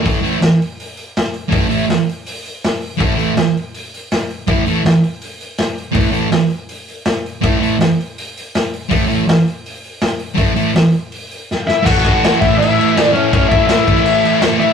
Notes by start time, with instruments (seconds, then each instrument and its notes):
0.02 distorted electric guitar A2 E3 A3, kick, open hi-hat
0.22 distorted electric guitar A2 E3 A3, open hi-hat
0.42 snare, open hi-hat
0.62 open hi-hat
0.80 open hi-hat
0.97 open hi-hat
1.17 snare, open hi-hat
1.34 open hi-hat
1.49 distorted electric guitar A2 E3 A3, kick, open hi-hat
1.68 distorted electric guitar A2 E3 A3, open hi-hat
1.90 snare, open hi-hat
2.09 open hi-hat
2.26 open hi-hat
2.46 open hi-hat
2.64 snare, open hi-hat
2.82 open hi-hat
2.97 distorted electric guitar A2 E3 A3, kick, open hi-hat
3.15 distorted electric guitar A2 E3 A3, open hi-hat
3.37 snare, open hi-hat
3.57 open hi-hat
3.75 open hi-hat
3.94 open hi-hat
4.12 snare, open hi-hat
4.30 open hi-hat
4.47 distorted electric guitar A2 E3 A3, kick, open hi-hat
4.66 distorted electric guitar A2 E3 A3, open hi-hat
4.86 snare, open hi-hat
5.04 open hi-hat
5.22 open hi-hat
5.40 open hi-hat
5.58 snare, open hi-hat
5.78 open hi-hat
5.92 distorted electric guitar A2 E3 A3, kick, open hi-hat
6.11 distorted electric guitar A2 E3 A3, open hi-hat
6.32 snare, open hi-hat
6.50 open hi-hat
6.69 open hi-hat
6.88 open hi-hat
7.05 snare, open hi-hat
7.26 open hi-hat
7.41 distorted electric guitar A2 E3 A3, kick, open hi-hat
7.59 distorted electric guitar A2 E3 A3
7.63 open hi-hat
7.81 snare, open hi-hat
8.01 open hi-hat
8.18 open hi-hat
8.37 open hi-hat
8.55 snare, open hi-hat
8.74 open hi-hat
8.89 distorted electric guitar A2 E3 A3, kick, open hi-hat
9.06 distorted electric guitar A2 E3 A3
9.10 open hi-hat
9.29 snare, open hi-hat
9.48 open hi-hat
9.66 open hi-hat
9.84 open hi-hat
10.01 snare, open hi-hat
10.19 open hi-hat
10.34 distorted electric guitar A2 E3 A3, kick, open hi-hat
10.55 distorted electric guitar A2 E3 A3, open hi-hat
10.75 snare, open hi-hat
10.93 open hi-hat
11.12 open hi-hat
11.31 open hi-hat
11.51 snare
11.67 lead electric guitar E4, snare
11.83 distorted electric guitar A2 E3 A3, lead electric guitar F#4, kick
11.87 crash
12.05 kick, crash
12.24 snare, crash
12.37 distorted electric guitar E3 A3
12.41 lead electric guitar E4, kick, snare, crash
12.54 snare
12.58 lead electric guitar E4, crash
12.77 distorted electric guitar E3 A3, crash
12.95 distorted electric guitar A2 E3, snare, crash
12.99 distorted electric guitar A3
13.12 distorted electric guitar A3, lead electric guitar C#4, crash
13.16 distorted electric guitar E3
13.30 distorted electric guitar A2 E3 A3, lead electric guitar C#4, kick, crash
13.48 lead electric guitar E4, kick, crash
13.67 lead electric guitar E4, snare, crash
13.86 distorted electric guitar E3 A3, kick, crash
13.95 snare
14.06 crash
14.24 distorted electric guitar E3 A3, crash
14.41 distorted electric guitar A2 E3, snare, crash
14.46 distorted electric guitar A3
14.58 distorted electric guitar E3 A3, lead electric guitar E4, crash